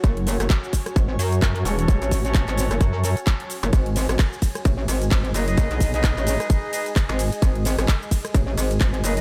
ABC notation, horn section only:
X:1
M:4/4
L:1/16
Q:"Swing 16ths" 1/4=130
K:G#phr
V:1 name="Horn section"
z12 z2 [CFAc] [CFAc]- | [CFAc]3 [CFAc]4- [CFAc] [CFAc]2 [CFAc] z4 z | z12 z2 [DGBd] [DGBd]- | [DGBd]3 [DGBd]4- [DGBd] [DGBd]2 [DGBd] z4 z |
z12 z2 [DGBd] [DGBd] |]